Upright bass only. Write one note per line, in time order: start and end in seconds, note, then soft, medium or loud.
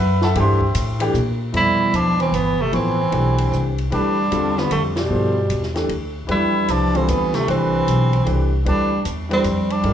0.00 0.34 F#2 loud
0.35 0.74 G2 loud
0.75 1.13 A2 loud
1.14 1.53 A#2 loud
1.53 1.92 F2 medium
1.93 2.32 E2 medium
2.32 2.71 G1 medium
2.72 3.11 A1 medium
3.12 3.50 B1 medium
3.52 3.90 C2 medium
3.92 4.30 D2 medium
4.31 4.69 E2 medium
4.70 5.09 F2 medium
5.10 5.48 G2 medium
5.49 5.88 E2 medium
5.89 6.27 D2 medium
6.28 6.67 F2 medium
6.69 7.07 C2 medium
7.08 7.46 D2 medium
7.48 7.86 C2 medium
7.87 8.25 B1 medium
8.26 8.64 C2 medium
8.66 9.04 D2 medium
9.05 9.43 E2 medium
9.44 9.82 F2 medium
9.84 9.93 G2 medium